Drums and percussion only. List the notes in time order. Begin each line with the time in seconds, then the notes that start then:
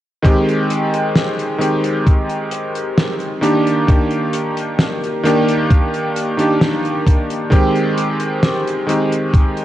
0.25 kick, closed hi-hat
0.49 closed hi-hat
0.70 closed hi-hat
0.94 closed hi-hat
1.15 snare, closed hi-hat
1.39 closed hi-hat
1.61 closed hi-hat
1.84 closed hi-hat
2.07 kick, closed hi-hat
2.30 closed hi-hat
2.51 closed hi-hat
2.75 closed hi-hat
2.98 snare, closed hi-hat
3.20 closed hi-hat
3.43 closed hi-hat
3.67 closed hi-hat
3.89 kick, closed hi-hat
4.11 closed hi-hat
4.33 closed hi-hat
4.57 closed hi-hat
4.79 snare, closed hi-hat
5.04 closed hi-hat
5.25 closed hi-hat
5.48 closed hi-hat
5.70 kick, closed hi-hat
5.94 closed hi-hat
6.16 closed hi-hat
6.39 closed hi-hat
6.61 snare, closed hi-hat
6.85 closed hi-hat
7.07 kick, closed hi-hat
7.30 closed hi-hat
7.52 kick, closed hi-hat
7.76 closed hi-hat
7.98 closed hi-hat
8.20 closed hi-hat
8.43 snare, closed hi-hat
8.67 closed hi-hat
8.89 closed hi-hat
9.12 closed hi-hat
9.34 kick, closed hi-hat
9.57 closed hi-hat